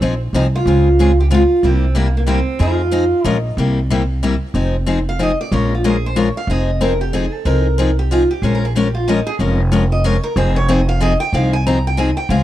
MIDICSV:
0, 0, Header, 1, 4, 480
1, 0, Start_track
1, 0, Key_signature, -4, "minor"
1, 0, Tempo, 323276
1, 992, Time_signature, 3, 2, 24, 8
1, 18461, End_track
2, 0, Start_track
2, 0, Title_t, "Steel-string acoustic guitar"
2, 0, Program_c, 0, 25
2, 0, Note_on_c, 0, 60, 91
2, 272, Note_off_c, 0, 60, 0
2, 532, Note_on_c, 0, 63, 94
2, 607, Note_off_c, 0, 63, 0
2, 825, Note_on_c, 0, 65, 101
2, 1781, Note_off_c, 0, 65, 0
2, 1787, Note_on_c, 0, 67, 81
2, 1861, Note_off_c, 0, 67, 0
2, 1996, Note_on_c, 0, 65, 98
2, 2456, Note_on_c, 0, 60, 84
2, 2467, Note_off_c, 0, 65, 0
2, 2890, Note_off_c, 0, 60, 0
2, 2927, Note_on_c, 0, 58, 72
2, 3205, Note_off_c, 0, 58, 0
2, 3223, Note_on_c, 0, 58, 71
2, 3297, Note_off_c, 0, 58, 0
2, 3396, Note_on_c, 0, 60, 92
2, 3888, Note_off_c, 0, 60, 0
2, 3895, Note_on_c, 0, 65, 91
2, 4860, Note_off_c, 0, 65, 0
2, 4860, Note_on_c, 0, 63, 91
2, 5264, Note_off_c, 0, 63, 0
2, 7554, Note_on_c, 0, 77, 85
2, 7724, Note_off_c, 0, 77, 0
2, 7765, Note_on_c, 0, 75, 86
2, 8021, Note_off_c, 0, 75, 0
2, 8029, Note_on_c, 0, 74, 97
2, 8201, Note_off_c, 0, 74, 0
2, 8219, Note_on_c, 0, 73, 80
2, 8488, Note_off_c, 0, 73, 0
2, 8531, Note_on_c, 0, 65, 47
2, 8693, Note_off_c, 0, 65, 0
2, 8728, Note_on_c, 0, 68, 77
2, 8983, Note_off_c, 0, 68, 0
2, 9001, Note_on_c, 0, 72, 91
2, 9190, Note_off_c, 0, 72, 0
2, 9190, Note_on_c, 0, 73, 79
2, 9454, Note_off_c, 0, 73, 0
2, 9461, Note_on_c, 0, 77, 95
2, 9638, Note_off_c, 0, 77, 0
2, 9662, Note_on_c, 0, 75, 88
2, 10096, Note_off_c, 0, 75, 0
2, 10127, Note_on_c, 0, 70, 72
2, 10402, Note_off_c, 0, 70, 0
2, 10408, Note_on_c, 0, 67, 83
2, 10592, Note_off_c, 0, 67, 0
2, 10609, Note_on_c, 0, 68, 86
2, 10882, Note_off_c, 0, 68, 0
2, 10882, Note_on_c, 0, 69, 87
2, 11073, Note_off_c, 0, 69, 0
2, 11073, Note_on_c, 0, 70, 92
2, 11844, Note_off_c, 0, 70, 0
2, 11862, Note_on_c, 0, 67, 78
2, 12048, Note_off_c, 0, 67, 0
2, 12048, Note_on_c, 0, 65, 83
2, 12323, Note_off_c, 0, 65, 0
2, 12334, Note_on_c, 0, 67, 84
2, 12522, Note_off_c, 0, 67, 0
2, 12522, Note_on_c, 0, 68, 75
2, 12675, Note_off_c, 0, 68, 0
2, 12693, Note_on_c, 0, 70, 91
2, 12840, Note_off_c, 0, 70, 0
2, 12843, Note_on_c, 0, 68, 77
2, 12992, Note_off_c, 0, 68, 0
2, 12998, Note_on_c, 0, 67, 65
2, 13277, Note_off_c, 0, 67, 0
2, 13283, Note_on_c, 0, 65, 75
2, 13469, Note_off_c, 0, 65, 0
2, 13477, Note_on_c, 0, 63, 79
2, 13757, Note_off_c, 0, 63, 0
2, 13758, Note_on_c, 0, 68, 102
2, 13874, Note_off_c, 0, 68, 0
2, 14731, Note_on_c, 0, 75, 94
2, 14918, Note_off_c, 0, 75, 0
2, 14918, Note_on_c, 0, 73, 91
2, 15197, Note_off_c, 0, 73, 0
2, 15197, Note_on_c, 0, 70, 94
2, 15400, Note_off_c, 0, 70, 0
2, 15400, Note_on_c, 0, 72, 89
2, 15677, Note_off_c, 0, 72, 0
2, 15683, Note_on_c, 0, 73, 117
2, 15868, Note_off_c, 0, 73, 0
2, 15883, Note_on_c, 0, 75, 84
2, 16158, Note_off_c, 0, 75, 0
2, 16164, Note_on_c, 0, 77, 104
2, 16348, Note_off_c, 0, 77, 0
2, 16368, Note_on_c, 0, 75, 95
2, 16625, Note_off_c, 0, 75, 0
2, 16631, Note_on_c, 0, 79, 116
2, 16821, Note_off_c, 0, 79, 0
2, 16850, Note_on_c, 0, 77, 97
2, 17118, Note_off_c, 0, 77, 0
2, 17124, Note_on_c, 0, 80, 102
2, 17307, Note_off_c, 0, 80, 0
2, 17323, Note_on_c, 0, 82, 89
2, 17598, Note_off_c, 0, 82, 0
2, 17626, Note_on_c, 0, 79, 100
2, 17797, Note_off_c, 0, 79, 0
2, 17797, Note_on_c, 0, 80, 105
2, 18061, Note_off_c, 0, 80, 0
2, 18067, Note_on_c, 0, 79, 93
2, 18258, Note_off_c, 0, 79, 0
2, 18267, Note_on_c, 0, 77, 90
2, 18461, Note_off_c, 0, 77, 0
2, 18461, End_track
3, 0, Start_track
3, 0, Title_t, "Steel-string acoustic guitar"
3, 0, Program_c, 1, 25
3, 27, Note_on_c, 1, 53, 81
3, 32, Note_on_c, 1, 60, 83
3, 38, Note_on_c, 1, 63, 85
3, 41, Note_on_c, 1, 68, 93
3, 192, Note_off_c, 1, 53, 0
3, 195, Note_off_c, 1, 60, 0
3, 198, Note_off_c, 1, 63, 0
3, 199, Note_off_c, 1, 68, 0
3, 511, Note_on_c, 1, 53, 92
3, 519, Note_on_c, 1, 60, 95
3, 525, Note_on_c, 1, 63, 79
3, 532, Note_on_c, 1, 68, 103
3, 674, Note_off_c, 1, 53, 0
3, 678, Note_off_c, 1, 60, 0
3, 681, Note_off_c, 1, 63, 0
3, 684, Note_off_c, 1, 68, 0
3, 994, Note_on_c, 1, 49, 64
3, 996, Note_on_c, 1, 56, 67
3, 1004, Note_on_c, 1, 60, 66
3, 1005, Note_on_c, 1, 68, 73
3, 1011, Note_on_c, 1, 65, 69
3, 1293, Note_off_c, 1, 49, 0
3, 1294, Note_off_c, 1, 56, 0
3, 1298, Note_off_c, 1, 60, 0
3, 1299, Note_off_c, 1, 68, 0
3, 1302, Note_off_c, 1, 65, 0
3, 1473, Note_on_c, 1, 49, 86
3, 1483, Note_on_c, 1, 56, 80
3, 1483, Note_on_c, 1, 60, 82
3, 1491, Note_on_c, 1, 65, 96
3, 1498, Note_on_c, 1, 68, 100
3, 1634, Note_off_c, 1, 49, 0
3, 1639, Note_off_c, 1, 60, 0
3, 1640, Note_off_c, 1, 56, 0
3, 1643, Note_off_c, 1, 65, 0
3, 1647, Note_off_c, 1, 68, 0
3, 1938, Note_on_c, 1, 49, 80
3, 1945, Note_on_c, 1, 56, 84
3, 1951, Note_on_c, 1, 68, 92
3, 1952, Note_on_c, 1, 60, 87
3, 1952, Note_on_c, 1, 65, 98
3, 2106, Note_off_c, 1, 49, 0
3, 2110, Note_off_c, 1, 56, 0
3, 2113, Note_off_c, 1, 68, 0
3, 2114, Note_off_c, 1, 60, 0
3, 2114, Note_off_c, 1, 65, 0
3, 2423, Note_on_c, 1, 48, 66
3, 2434, Note_on_c, 1, 55, 67
3, 2437, Note_on_c, 1, 58, 72
3, 2442, Note_on_c, 1, 64, 69
3, 2446, Note_on_c, 1, 67, 70
3, 2727, Note_off_c, 1, 48, 0
3, 2733, Note_off_c, 1, 55, 0
3, 2735, Note_off_c, 1, 58, 0
3, 2737, Note_off_c, 1, 64, 0
3, 2739, Note_off_c, 1, 67, 0
3, 2892, Note_on_c, 1, 48, 91
3, 2900, Note_on_c, 1, 55, 81
3, 2906, Note_on_c, 1, 58, 87
3, 2909, Note_on_c, 1, 67, 89
3, 2912, Note_on_c, 1, 64, 86
3, 3063, Note_off_c, 1, 48, 0
3, 3067, Note_off_c, 1, 55, 0
3, 3070, Note_off_c, 1, 58, 0
3, 3072, Note_off_c, 1, 67, 0
3, 3074, Note_off_c, 1, 64, 0
3, 3363, Note_on_c, 1, 48, 80
3, 3370, Note_on_c, 1, 55, 77
3, 3377, Note_on_c, 1, 58, 102
3, 3377, Note_on_c, 1, 67, 102
3, 3382, Note_on_c, 1, 64, 89
3, 3539, Note_off_c, 1, 48, 0
3, 3543, Note_off_c, 1, 55, 0
3, 3546, Note_off_c, 1, 58, 0
3, 3546, Note_off_c, 1, 67, 0
3, 3549, Note_off_c, 1, 64, 0
3, 3846, Note_on_c, 1, 53, 72
3, 3855, Note_on_c, 1, 60, 72
3, 3859, Note_on_c, 1, 63, 80
3, 3870, Note_on_c, 1, 68, 79
3, 4159, Note_off_c, 1, 53, 0
3, 4164, Note_off_c, 1, 60, 0
3, 4166, Note_off_c, 1, 63, 0
3, 4171, Note_off_c, 1, 68, 0
3, 4326, Note_on_c, 1, 53, 81
3, 4333, Note_on_c, 1, 60, 91
3, 4339, Note_on_c, 1, 63, 96
3, 4348, Note_on_c, 1, 68, 95
3, 4501, Note_off_c, 1, 53, 0
3, 4504, Note_off_c, 1, 60, 0
3, 4507, Note_off_c, 1, 63, 0
3, 4512, Note_off_c, 1, 68, 0
3, 4817, Note_on_c, 1, 53, 88
3, 4829, Note_on_c, 1, 56, 96
3, 4831, Note_on_c, 1, 65, 101
3, 4833, Note_on_c, 1, 61, 93
3, 4835, Note_on_c, 1, 70, 100
3, 4987, Note_off_c, 1, 53, 0
3, 4992, Note_off_c, 1, 56, 0
3, 4994, Note_off_c, 1, 61, 0
3, 4994, Note_off_c, 1, 65, 0
3, 4995, Note_off_c, 1, 70, 0
3, 5318, Note_on_c, 1, 48, 64
3, 5320, Note_on_c, 1, 55, 67
3, 5327, Note_on_c, 1, 58, 66
3, 5334, Note_on_c, 1, 64, 68
3, 5339, Note_on_c, 1, 67, 77
3, 5615, Note_off_c, 1, 48, 0
3, 5617, Note_off_c, 1, 55, 0
3, 5620, Note_off_c, 1, 58, 0
3, 5624, Note_off_c, 1, 64, 0
3, 5626, Note_off_c, 1, 67, 0
3, 5797, Note_on_c, 1, 55, 77
3, 5798, Note_on_c, 1, 48, 91
3, 5808, Note_on_c, 1, 58, 84
3, 5811, Note_on_c, 1, 64, 99
3, 5813, Note_on_c, 1, 67, 101
3, 5957, Note_off_c, 1, 48, 0
3, 5957, Note_off_c, 1, 55, 0
3, 5962, Note_off_c, 1, 58, 0
3, 5964, Note_off_c, 1, 64, 0
3, 5965, Note_off_c, 1, 67, 0
3, 6277, Note_on_c, 1, 48, 80
3, 6280, Note_on_c, 1, 55, 87
3, 6285, Note_on_c, 1, 58, 87
3, 6294, Note_on_c, 1, 64, 95
3, 6295, Note_on_c, 1, 67, 88
3, 6437, Note_off_c, 1, 48, 0
3, 6439, Note_off_c, 1, 55, 0
3, 6441, Note_off_c, 1, 58, 0
3, 6446, Note_off_c, 1, 64, 0
3, 6446, Note_off_c, 1, 67, 0
3, 6748, Note_on_c, 1, 53, 57
3, 6752, Note_on_c, 1, 60, 70
3, 6759, Note_on_c, 1, 63, 66
3, 6765, Note_on_c, 1, 68, 77
3, 7051, Note_off_c, 1, 53, 0
3, 7053, Note_off_c, 1, 60, 0
3, 7057, Note_off_c, 1, 63, 0
3, 7060, Note_off_c, 1, 68, 0
3, 7222, Note_on_c, 1, 53, 88
3, 7229, Note_on_c, 1, 60, 88
3, 7235, Note_on_c, 1, 63, 90
3, 7243, Note_on_c, 1, 68, 90
3, 7390, Note_off_c, 1, 53, 0
3, 7393, Note_off_c, 1, 60, 0
3, 7397, Note_off_c, 1, 63, 0
3, 7401, Note_off_c, 1, 68, 0
3, 7708, Note_on_c, 1, 53, 79
3, 7712, Note_on_c, 1, 60, 83
3, 7717, Note_on_c, 1, 63, 83
3, 7725, Note_on_c, 1, 68, 98
3, 7873, Note_off_c, 1, 53, 0
3, 7875, Note_off_c, 1, 60, 0
3, 7878, Note_off_c, 1, 63, 0
3, 7882, Note_off_c, 1, 68, 0
3, 8196, Note_on_c, 1, 53, 70
3, 8203, Note_on_c, 1, 56, 64
3, 8204, Note_on_c, 1, 61, 66
3, 8205, Note_on_c, 1, 65, 72
3, 8216, Note_on_c, 1, 70, 76
3, 8496, Note_off_c, 1, 53, 0
3, 8500, Note_off_c, 1, 56, 0
3, 8500, Note_off_c, 1, 61, 0
3, 8500, Note_off_c, 1, 65, 0
3, 8506, Note_off_c, 1, 70, 0
3, 8674, Note_on_c, 1, 56, 87
3, 8677, Note_on_c, 1, 53, 83
3, 8686, Note_on_c, 1, 61, 86
3, 8686, Note_on_c, 1, 70, 91
3, 8693, Note_on_c, 1, 65, 94
3, 8837, Note_off_c, 1, 56, 0
3, 8838, Note_off_c, 1, 53, 0
3, 8843, Note_off_c, 1, 61, 0
3, 8843, Note_off_c, 1, 70, 0
3, 8846, Note_off_c, 1, 65, 0
3, 9147, Note_on_c, 1, 53, 85
3, 9147, Note_on_c, 1, 56, 89
3, 9154, Note_on_c, 1, 61, 79
3, 9155, Note_on_c, 1, 65, 96
3, 9161, Note_on_c, 1, 70, 100
3, 9314, Note_off_c, 1, 53, 0
3, 9314, Note_off_c, 1, 56, 0
3, 9317, Note_off_c, 1, 61, 0
3, 9318, Note_off_c, 1, 65, 0
3, 9321, Note_off_c, 1, 70, 0
3, 9646, Note_on_c, 1, 60, 69
3, 9647, Note_on_c, 1, 53, 59
3, 9656, Note_on_c, 1, 63, 66
3, 9662, Note_on_c, 1, 68, 83
3, 9942, Note_off_c, 1, 53, 0
3, 9942, Note_off_c, 1, 60, 0
3, 9947, Note_off_c, 1, 63, 0
3, 9950, Note_off_c, 1, 68, 0
3, 10107, Note_on_c, 1, 53, 89
3, 10112, Note_on_c, 1, 60, 91
3, 10120, Note_on_c, 1, 63, 97
3, 10126, Note_on_c, 1, 68, 104
3, 10274, Note_off_c, 1, 53, 0
3, 10277, Note_off_c, 1, 60, 0
3, 10280, Note_off_c, 1, 63, 0
3, 10283, Note_off_c, 1, 68, 0
3, 10589, Note_on_c, 1, 53, 84
3, 10591, Note_on_c, 1, 60, 81
3, 10604, Note_on_c, 1, 63, 93
3, 10611, Note_on_c, 1, 68, 87
3, 10755, Note_off_c, 1, 53, 0
3, 10756, Note_off_c, 1, 60, 0
3, 10763, Note_off_c, 1, 63, 0
3, 10766, Note_off_c, 1, 68, 0
3, 11065, Note_on_c, 1, 53, 67
3, 11071, Note_on_c, 1, 60, 70
3, 11079, Note_on_c, 1, 63, 75
3, 11088, Note_on_c, 1, 68, 77
3, 11372, Note_off_c, 1, 53, 0
3, 11374, Note_off_c, 1, 60, 0
3, 11379, Note_off_c, 1, 63, 0
3, 11383, Note_off_c, 1, 68, 0
3, 11551, Note_on_c, 1, 53, 95
3, 11566, Note_on_c, 1, 60, 95
3, 11569, Note_on_c, 1, 63, 91
3, 11574, Note_on_c, 1, 68, 95
3, 11716, Note_off_c, 1, 53, 0
3, 11723, Note_off_c, 1, 60, 0
3, 11725, Note_off_c, 1, 63, 0
3, 11728, Note_off_c, 1, 68, 0
3, 12042, Note_on_c, 1, 53, 83
3, 12054, Note_on_c, 1, 60, 84
3, 12058, Note_on_c, 1, 63, 93
3, 12065, Note_on_c, 1, 68, 93
3, 12201, Note_off_c, 1, 53, 0
3, 12208, Note_off_c, 1, 60, 0
3, 12210, Note_off_c, 1, 63, 0
3, 12213, Note_off_c, 1, 68, 0
3, 12518, Note_on_c, 1, 53, 57
3, 12522, Note_on_c, 1, 56, 65
3, 12529, Note_on_c, 1, 65, 70
3, 12531, Note_on_c, 1, 61, 74
3, 12543, Note_on_c, 1, 70, 75
3, 12818, Note_off_c, 1, 53, 0
3, 12820, Note_off_c, 1, 56, 0
3, 12823, Note_off_c, 1, 65, 0
3, 12825, Note_off_c, 1, 61, 0
3, 12830, Note_off_c, 1, 70, 0
3, 13003, Note_on_c, 1, 53, 84
3, 13012, Note_on_c, 1, 56, 91
3, 13022, Note_on_c, 1, 61, 92
3, 13022, Note_on_c, 1, 65, 92
3, 13028, Note_on_c, 1, 70, 95
3, 13162, Note_off_c, 1, 53, 0
3, 13166, Note_off_c, 1, 56, 0
3, 13171, Note_off_c, 1, 61, 0
3, 13172, Note_off_c, 1, 65, 0
3, 13174, Note_off_c, 1, 70, 0
3, 13483, Note_on_c, 1, 53, 78
3, 13488, Note_on_c, 1, 56, 90
3, 13498, Note_on_c, 1, 65, 97
3, 13500, Note_on_c, 1, 61, 87
3, 13504, Note_on_c, 1, 70, 96
3, 13642, Note_off_c, 1, 53, 0
3, 13644, Note_off_c, 1, 56, 0
3, 13649, Note_off_c, 1, 65, 0
3, 13650, Note_off_c, 1, 61, 0
3, 13652, Note_off_c, 1, 70, 0
3, 13949, Note_on_c, 1, 53, 66
3, 13959, Note_on_c, 1, 56, 69
3, 13961, Note_on_c, 1, 61, 69
3, 13967, Note_on_c, 1, 65, 71
3, 13973, Note_on_c, 1, 70, 71
3, 14253, Note_off_c, 1, 53, 0
3, 14258, Note_off_c, 1, 56, 0
3, 14259, Note_off_c, 1, 61, 0
3, 14262, Note_off_c, 1, 65, 0
3, 14265, Note_off_c, 1, 70, 0
3, 14426, Note_on_c, 1, 53, 93
3, 14434, Note_on_c, 1, 56, 81
3, 14442, Note_on_c, 1, 61, 93
3, 14444, Note_on_c, 1, 65, 92
3, 14448, Note_on_c, 1, 70, 88
3, 14593, Note_off_c, 1, 53, 0
3, 14597, Note_off_c, 1, 56, 0
3, 14601, Note_off_c, 1, 61, 0
3, 14602, Note_off_c, 1, 65, 0
3, 14604, Note_off_c, 1, 70, 0
3, 14909, Note_on_c, 1, 53, 90
3, 14912, Note_on_c, 1, 56, 96
3, 14918, Note_on_c, 1, 61, 89
3, 14924, Note_on_c, 1, 65, 92
3, 14930, Note_on_c, 1, 70, 104
3, 15074, Note_off_c, 1, 53, 0
3, 15075, Note_off_c, 1, 56, 0
3, 15079, Note_off_c, 1, 61, 0
3, 15082, Note_off_c, 1, 65, 0
3, 15085, Note_off_c, 1, 70, 0
3, 15395, Note_on_c, 1, 53, 68
3, 15395, Note_on_c, 1, 60, 74
3, 15396, Note_on_c, 1, 63, 74
3, 15407, Note_on_c, 1, 68, 82
3, 15695, Note_off_c, 1, 53, 0
3, 15695, Note_off_c, 1, 60, 0
3, 15696, Note_off_c, 1, 63, 0
3, 15701, Note_off_c, 1, 68, 0
3, 15864, Note_on_c, 1, 53, 95
3, 15869, Note_on_c, 1, 60, 97
3, 15875, Note_on_c, 1, 63, 89
3, 15881, Note_on_c, 1, 68, 100
3, 16031, Note_off_c, 1, 53, 0
3, 16034, Note_off_c, 1, 60, 0
3, 16036, Note_off_c, 1, 63, 0
3, 16039, Note_off_c, 1, 68, 0
3, 16339, Note_on_c, 1, 53, 87
3, 16346, Note_on_c, 1, 60, 93
3, 16350, Note_on_c, 1, 63, 92
3, 16355, Note_on_c, 1, 68, 100
3, 16508, Note_off_c, 1, 53, 0
3, 16512, Note_off_c, 1, 60, 0
3, 16513, Note_off_c, 1, 63, 0
3, 16516, Note_off_c, 1, 68, 0
3, 16833, Note_on_c, 1, 53, 68
3, 16842, Note_on_c, 1, 63, 73
3, 16844, Note_on_c, 1, 60, 67
3, 16849, Note_on_c, 1, 68, 77
3, 17133, Note_off_c, 1, 53, 0
3, 17138, Note_off_c, 1, 60, 0
3, 17138, Note_off_c, 1, 63, 0
3, 17141, Note_off_c, 1, 68, 0
3, 17321, Note_on_c, 1, 53, 84
3, 17322, Note_on_c, 1, 60, 91
3, 17338, Note_on_c, 1, 63, 82
3, 17338, Note_on_c, 1, 68, 97
3, 17478, Note_off_c, 1, 53, 0
3, 17479, Note_off_c, 1, 60, 0
3, 17487, Note_off_c, 1, 63, 0
3, 17487, Note_off_c, 1, 68, 0
3, 17777, Note_on_c, 1, 53, 86
3, 17789, Note_on_c, 1, 60, 88
3, 17798, Note_on_c, 1, 63, 87
3, 17805, Note_on_c, 1, 68, 92
3, 17946, Note_off_c, 1, 53, 0
3, 17952, Note_off_c, 1, 60, 0
3, 17956, Note_off_c, 1, 63, 0
3, 17960, Note_off_c, 1, 68, 0
3, 18265, Note_on_c, 1, 49, 59
3, 18266, Note_on_c, 1, 56, 69
3, 18272, Note_on_c, 1, 60, 73
3, 18278, Note_on_c, 1, 65, 76
3, 18283, Note_on_c, 1, 68, 79
3, 18461, Note_off_c, 1, 49, 0
3, 18461, Note_off_c, 1, 56, 0
3, 18461, Note_off_c, 1, 60, 0
3, 18461, Note_off_c, 1, 65, 0
3, 18461, Note_off_c, 1, 68, 0
3, 18461, End_track
4, 0, Start_track
4, 0, Title_t, "Upright bass"
4, 0, Program_c, 2, 32
4, 14, Note_on_c, 2, 34, 78
4, 430, Note_off_c, 2, 34, 0
4, 489, Note_on_c, 2, 36, 82
4, 906, Note_off_c, 2, 36, 0
4, 973, Note_on_c, 2, 37, 92
4, 2132, Note_off_c, 2, 37, 0
4, 2420, Note_on_c, 2, 36, 85
4, 3576, Note_off_c, 2, 36, 0
4, 3855, Note_on_c, 2, 41, 100
4, 4629, Note_off_c, 2, 41, 0
4, 4817, Note_on_c, 2, 34, 93
4, 5207, Note_off_c, 2, 34, 0
4, 5300, Note_on_c, 2, 36, 95
4, 6457, Note_off_c, 2, 36, 0
4, 6740, Note_on_c, 2, 29, 92
4, 7898, Note_off_c, 2, 29, 0
4, 8190, Note_on_c, 2, 34, 102
4, 9344, Note_off_c, 2, 34, 0
4, 9611, Note_on_c, 2, 29, 90
4, 10773, Note_off_c, 2, 29, 0
4, 11066, Note_on_c, 2, 36, 86
4, 12222, Note_off_c, 2, 36, 0
4, 12501, Note_on_c, 2, 34, 85
4, 13659, Note_off_c, 2, 34, 0
4, 13943, Note_on_c, 2, 29, 91
4, 15099, Note_off_c, 2, 29, 0
4, 15381, Note_on_c, 2, 29, 106
4, 16537, Note_off_c, 2, 29, 0
4, 16817, Note_on_c, 2, 36, 95
4, 17973, Note_off_c, 2, 36, 0
4, 18248, Note_on_c, 2, 37, 99
4, 18461, Note_off_c, 2, 37, 0
4, 18461, End_track
0, 0, End_of_file